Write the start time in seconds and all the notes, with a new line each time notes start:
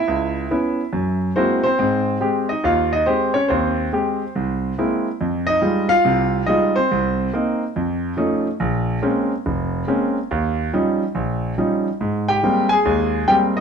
Already playing: E4 E5
0.08 C#2
0.51 B3 C#4 E4
0.93 F#2
1.36 G#3 A#3 C4 E4 F#4 C5
1.63 C4 C5
1.79 G#2 C4
2.21 G#3 C4 G4
2.49 D#4 D#5
2.64 D#2 F4 F5
2.93 D#4 D#5
3.06 G#3 C4 G4 C5
3.34 C#4 C#5
3.48 D#2 C4 C5
3.93 G#3 C4 G4
4.35 C2
4.78 G#3 A#3 C4 E4
5.21 F2
5.47 D#4 D#5
5.62 G3 G#3 D#4 F4
5.89 F4 F5
6.05 C2 C3
6.46 G3 G#3 D#4 F4 D#5
6.76 C4 C5
6.91 C2
7.33 A#3 C4 D#4
7.76 F2
8.17 F3 A3 C#4 D#4
8.60 A#1
9.02 G#3 A#3 C4 C#4
9.46 F1
9.88 G#3 A#3 C4 C#4
10.31 D#2
10.73 F3 G3 C#4 D#4
11.15 A#1
11.58 F3 G3 C#4 D#4
12.01 G#2
12.28 G4 G5
12.43 G3 G#3 A#3 C4
12.69 G#4 G#5
12.85 D#2 G#3
13.27 G3 G#3 A#3 C4 G4 G5
13.57 D#5